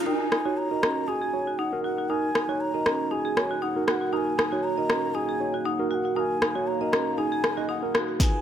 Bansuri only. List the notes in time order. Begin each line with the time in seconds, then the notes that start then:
0.07 G#5
0.57 A#5
1.08 G#5
1.59 F#5
1.84 F#5
2.10 G#5
2.60 A#5
3.12 G#5
3.62 F#5
3.87 F#5 G#5
4.13 G#5 A#5
4.64 A#5
5.15 G#5
5.66 F#5
5.91 F#5 G#5
6.16 G#5 A#5
6.67 A#5
7.18 G#5
7.69 F#5
8.20 G#5 A#5